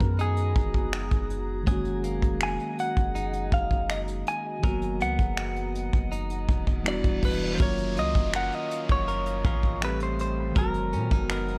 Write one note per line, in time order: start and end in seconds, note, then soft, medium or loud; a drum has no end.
0.00 0.54 F#2 loud
0.00 1.61 D#3 medium
0.00 1.63 F#3 medium
0.00 1.67 F#3 medium
0.00 1.62 G#3 medium
0.00 1.64 B3 medium
0.00 1.74 B3 medium
0.00 1.65 F#4 medium
0.00 4.59 F#4 medium
0.00 4.59 G#4 medium
0.00 0.21 A#4 medium
0.00 1.67 A#4 medium
0.00 4.60 A#5 medium
0.00 kick medium
0.00 closed hi-hat soft
0.19 3.15 D#4 medium
0.19 1.27 G#4 medium
0.19 closed hi-hat medium
0.37 closed hi-hat medium
0.56 1.09 F#1 loud
0.56 kick loud
0.56 closed hi-hat soft
0.74 kick medium
0.93 finger snap loud
0.93 closed hi-hat medium
1.11 1.65 F#1 loud
1.11 kick medium
1.11 closed hi-hat medium
1.30 closed hi-hat medium
1.63 4.57 D#3 medium
1.63 4.63 F#3 medium
1.63 4.58 G#3 medium
1.67 2.21 F#1 loud
1.67 4.59 A#3 medium
1.67 4.60 C#4 medium
1.67 4.64 G#4 medium
1.67 4.61 D#5 medium
1.67 kick loud
1.67 closed hi-hat medium
1.72 4.62 F#4 medium
1.85 closed hi-hat soft
2.04 5.00 A#3 medium
2.04 closed hi-hat medium
2.22 2.58 F1 loud
2.22 kick medium
2.22 closed hi-hat medium
2.41 2.80 G#5 loud
2.41 finger snap loud
2.41 closed hi-hat medium
2.60 closed hi-hat soft
2.79 3.53 F#5 loud
2.79 closed hi-hat medium
2.97 3.50 F#1 loud
2.97 kick medium
2.97 closed hi-hat soft
3.15 6.11 D#4 medium
3.15 closed hi-hat medium
3.33 closed hi-hat medium
3.52 4.23 F#1 loud
3.52 3.91 F5 medium
3.52 kick loud
3.52 closed hi-hat soft
3.71 kick medium
3.90 4.00 D#5 medium
3.90 finger snap loud
3.90 closed hi-hat medium
4.08 closed hi-hat medium
4.27 5.02 G#5 medium
4.27 closed hi-hat medium
4.59 6.79 D#3 medium
4.59 6.81 F#3 medium
4.63 5.02 F#1 loud
4.63 7.60 F#3 medium
4.63 6.82 A#3 medium
4.63 6.83 B3 medium
4.63 6.93 A#4 medium
4.63 6.83 D#5 medium
4.63 7.57 F#5 medium
4.63 6.83 A#5 medium
4.63 kick loud
4.63 closed hi-hat medium
4.68 6.84 F#4 medium
4.82 closed hi-hat soft
5.00 5.18 C#2 medium
5.00 6.93 B3 medium
5.00 6.45 F#5 medium
5.00 closed hi-hat medium
5.19 5.90 F#1 loud
5.19 kick medium
5.19 closed hi-hat medium
5.37 finger snap loud
5.37 closed hi-hat medium
5.56 closed hi-hat soft
5.75 closed hi-hat medium
5.93 6.47 F#1 loud
5.93 kick medium
5.93 closed hi-hat soft
6.12 6.93 D#4 medium
6.12 closed hi-hat medium
6.12 reverse cymbal medium
6.30 closed hi-hat medium
6.49 7.02 E1 loud
6.49 kick loud
6.49 closed hi-hat soft
6.67 kick medium
6.83 7.59 E3 medium
6.83 7.59 G3 medium
6.83 7.60 B3 medium
6.83 7.60 D4 medium
6.83 finger snap loud
6.83 closed hi-hat medium
6.88 7.61 F#4 medium
6.88 7.25 D5 loud
7.04 7.58 E1 loud
7.04 kick loud
7.04 closed hi-hat medium
7.23 7.55 B4 medium
7.23 kick medium
7.23 open hi-hat medium
7.55 9.76 D#3 medium
7.55 9.77 F#3 medium
7.55 7.61 C5 medium
7.60 7.99 F#1 loud
7.60 9.89 F#3 medium
7.60 9.78 A#3 medium
7.60 9.79 C#4 medium
7.60 8.34 A#4 medium
7.60 9.80 C#5 medium
7.60 7.99 C#5 loud
7.60 9.80 D#5 medium
7.60 9.80 F5 medium
7.60 9.80 D#6 medium
7.60 kick loud
7.60 closed hi-hat medium
7.60 downlifter medium
7.78 closed hi-hat medium
7.97 8.15 C#2 medium
7.97 8.33 F4 medium
7.97 8.36 D#5 medium
7.97 closed hi-hat medium
8.15 8.51 F#1 loud
8.15 kick medium
8.15 closed hi-hat medium
8.33 9.44 C#4 medium
8.33 9.44 F4 medium
8.33 9.07 A#4 medium
8.33 8.55 F#5 loud
8.33 finger snap loud
8.33 closed hi-hat medium
8.52 8.91 D#5 medium
8.52 closed hi-hat soft
8.71 closed hi-hat medium
8.89 9.43 F#1 loud
8.89 9.84 C#5 loud
8.89 kick medium
8.89 closed hi-hat soft
9.08 9.45 A#4 medium
9.08 closed hi-hat medium
9.26 closed hi-hat medium
9.45 10.52 A1 loud
9.45 9.89 C#4 medium
9.45 9.90 F4 medium
9.45 9.90 A#4 medium
9.45 kick loud
9.45 closed hi-hat soft
9.63 kick medium
9.80 10.55 E3 medium
9.80 10.56 G3 medium
9.80 10.55 A3 medium
9.80 10.57 C4 medium
9.80 finger snap loud
9.80 closed hi-hat medium
9.84 10.57 G4 medium
9.84 10.02 B4 medium
10.00 10.20 C5 medium
10.00 closed hi-hat medium
10.19 10.58 C5 medium
10.19 closed hi-hat medium
10.52 11.58 D#3 medium
10.52 11.58 G#3 medium
10.56 10.95 F#1 loud
10.56 11.58 F#3 medium
10.56 11.58 B3 medium
10.56 11.58 G#4 medium
10.56 11.31 A#4 medium
10.56 11.58 A#4 loud
10.56 11.58 A#5 medium
10.56 kick loud
10.56 closed hi-hat medium
10.60 11.58 F#4 medium
10.74 closed hi-hat soft
10.93 11.11 A#2 medium
10.93 11.11 C#4 medium
10.93 closed hi-hat medium
11.11 11.58 F#1 loud
11.11 11.29 D#4 medium
11.11 kick medium
11.11 closed hi-hat medium
11.30 11.58 B3 medium
11.30 11.58 D#4 medium
11.30 11.58 A#4 medium
11.30 finger snap loud
11.30 closed hi-hat medium
11.48 closed hi-hat soft